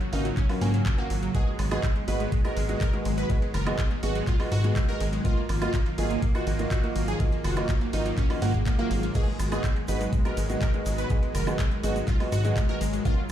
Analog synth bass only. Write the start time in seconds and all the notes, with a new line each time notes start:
0.13 G#1
0.61 G#2
1.10 G#1
1.59 G#1
2.08 G#1
2.57 G#1
3.05 G#1
3.54 F#1
4.03 G#1
4.52 G#2
5.01 G#1
5.49 G#1
5.98 G#1
6.47 G#1
6.96 G#1
7.44 F#1
7.93 G#1
8.42 G#2
8.91 G#1
9.40 G#1
9.88 G#1
10.37 G#1
10.86 G#1
11.35 F#1
11.83 G#1
12.32 G#2
12.81 G#1